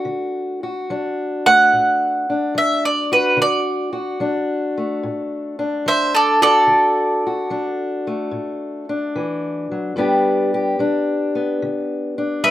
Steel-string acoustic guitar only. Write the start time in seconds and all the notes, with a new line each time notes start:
Already playing: A3 D4 F#4
0.05 D3
0.63 F#4
0.90 F#3 D4
1.46 A3
1.72 A2
2.30 D4
2.55 F#3
3.12 F#4
3.37 D3
3.93 F#4
4.20 F#3 D4
4.77 A3
5.03 A2
5.59 D4
5.86 F#3
6.42 F#4
6.67 D3
7.27 F#4
7.50 F#3 D4
8.07 A3
8.31 A2
8.89 D4
9.15 E3
9.71 F#3
9.96 G2 G3 B3 D4 G4
10.54 G4
10.79 G3 D4
11.35 B3
11.62 D3
12.18 D4
12.43 G3